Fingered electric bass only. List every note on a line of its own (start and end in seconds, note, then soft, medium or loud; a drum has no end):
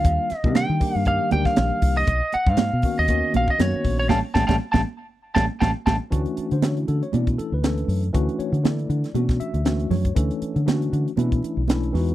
0.04 0.17 D#2 medium
0.31 muted fingered electric bass stroke soft
0.45 0.67 C3 medium
0.70 0.80 D#3 medium
0.96 1.18 G2 medium
1.32 1.45 D2 medium
1.58 1.70 A#1 loud
1.82 2.05 C2 medium
2.08 2.20 B1 medium
2.35 muted fingered electric bass stroke soft
2.47 2.70 G#2 medium
2.73 2.83 B2 medium
2.99 3.21 D#2 medium
3.35 3.47 A#1 medium
3.60 3.72 F#2 loud
3.74 muted fingered electric bass stroke soft
3.85 4.08 A#1 medium
4.10 4.20 A1 medium
4.35 4.46 A1 medium
4.49 4.58 A1 medium
4.74 4.83 A1 loud
5.37 5.47 A1 medium
5.62 5.72 A1 medium
5.87 5.97 A1 medium
6.12 6.25 D2 medium
6.38 muted fingered electric bass stroke soft
6.52 6.85 D3 medium
6.88 7.01 D3 medium
7.14 7.37 B2 medium
7.39 muted fingered electric bass stroke soft
7.52 7.86 D2 medium
7.88 8.12 F#2 medium
8.15 8.27 D2 medium
8.39 muted fingered electric bass stroke soft
8.52 8.86 D3 medium
8.90 9.03 D3 medium
9.14 9.38 B2 medium
9.40 muted fingered electric bass stroke soft
9.54 9.88 D2 medium
9.90 10.14 F#2 medium
10.16 10.29 D2 medium
10.42 muted fingered electric bass stroke soft
10.56 10.89 D3 medium
10.93 11.05 D3 medium
11.18 11.41 B2 medium
11.43 muted fingered electric bass stroke soft
11.57 11.90 B1 medium
11.94 12.15 E2 medium